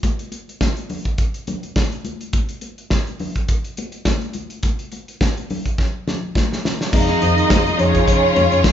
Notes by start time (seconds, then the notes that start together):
0.03 kick, closed hi-hat, muted conga
0.19 closed hi-hat
0.32 closed hi-hat, muted conga
0.49 closed hi-hat
0.61 kick, snare, high conga
0.77 closed hi-hat
0.89 open hi-hat, low conga
1.05 kick, closed hi-hat
1.18 kick, closed hi-hat
1.34 closed hi-hat
1.47 closed hi-hat, muted conga, low conga
1.63 closed hi-hat
1.76 kick, snare, high conga
1.92 closed hi-hat
2.05 closed hi-hat, high conga
2.21 closed hi-hat
2.33 kick, closed hi-hat, muted conga
2.49 closed hi-hat
2.61 closed hi-hat, muted conga
2.78 closed hi-hat
2.90 kick, snare, high conga
3.07 closed hi-hat
3.19 open hi-hat, low conga
3.36 kick, closed hi-hat
3.48 kick, closed hi-hat
3.64 closed hi-hat
3.77 closed hi-hat, muted conga
3.92 closed hi-hat
4.05 kick, snare, high conga
4.21 closed hi-hat
4.33 closed hi-hat, high conga
4.50 closed hi-hat
4.63 kick, closed hi-hat, muted conga
4.79 closed hi-hat
4.92 closed hi-hat, muted conga
5.08 closed hi-hat
5.21 kick, snare, high conga
5.37 closed hi-hat
5.50 open hi-hat, low conga
5.66 kick, closed hi-hat
5.78 kick, snare
6.08 snare, muted conga, low conga
6.35 kick, snare, high conga
6.52 snare
6.65 snare, high conga
6.81 snare
6.92 F1 D#3 F3 G#3 C4 D#4 F4 G#4 D#5 E5, muted clean electric guitar stroke, kick, crash, muted conga
7.00 F5
7.08 D#4 G#4 D#5, closed hi-hat
7.21 F2 D#4 G#4 C5, closed hi-hat, muted conga
7.38 closed hi-hat
7.49 F1 D#4 G#4 C5, kick, snare, high conga
7.66 muted clean electric guitar stroke, closed hi-hat
7.77 F2 C#3 F3 G#3 C#4 D#4 G#4 C#5, muted clean electric guitar stroke, closed hi-hat
7.93 F4 G#4 C#5, kick, closed hi-hat
8.06 F1, muted clean electric guitar stroke, kick, closed hi-hat
8.22 muted clean electric guitar stroke
8.36 F2, closed hi-hat, muted conga
8.50 F2, muted clean electric guitar stroke, closed hi-hat
8.64 G#1, muted clean electric guitar stroke, kick, snare, high conga